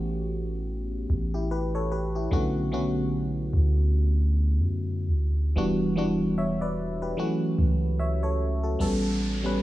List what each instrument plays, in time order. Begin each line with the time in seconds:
Already playing: 808-style bass A1, fm electric piano E3 A3 B3 C#4 F#4 G4
1.10 808-style bass A1
1.34 fm electric piano E4 G4
1.51 fm electric piano G4 B4
1.75 fm electric piano A4 C#5
1.92 fm electric piano G4 B4
2.15 fm electric piano E4 G4
2.31 808-style bass B1, fm electric piano D3 A3 B3 C#4 F#4
2.72 fm electric piano D3 A3 B3 C#4 F#4
3.53 808-style bass D2
4.58 808-style bass F#2
5.07 808-style bass D2
5.56 808-style bass E1, fm electric piano E3 G3 B3 D4 F#4
5.96 fm electric piano E3 G3 B3 D4 F#4
6.38 fm electric piano C#5 E5
6.61 fm electric piano B4 D5
7.02 fm electric piano G4 B4
7.17 fm electric piano E3 F#3 A3 C#4 F#4
7.59 808-style bass C#2
7.99 fm electric piano C#5 E5
8.23 fm electric piano A4 C#5
8.63 fm electric piano F#4 A4
8.79 808-style bass A1, fm electric piano G3 B3 C#4 A4, downlifter
9.43 fm electric piano G3 B3 C#4 B4